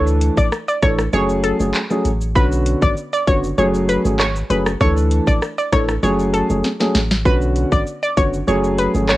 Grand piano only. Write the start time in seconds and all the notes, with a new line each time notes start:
Already playing: E3 A3 D4 A4
0.82 E3 A3 D4 A4
1.13 F#3 A3 C#4 G#4
1.60 F#3 A3 C#4 G#4
1.90 F#3 A3 C#4 G#4
2.35 D3 B3 C#4 F#4
3.27 D3 B3 C#4 F#4
3.58 F#3 A3 C#4 G#4
4.05 F#3 A3 C#4 G#4
4.50 F#3 A3 C#4 G#4
4.80 E3 A3 D4 A4
5.72 E3 A3 D4 A4
6.03 F#3 A3 C#4 G#4
6.50 F#3 A3 C#4 G#4
6.80 F#3 A3 C#4 G#4
7.25 D3 B3 C#4 F#4
8.17 D3 B3 C#4 F#4
8.47 F#3 A3 C#4 G#4
8.94 F#3 A3 C#4 G#4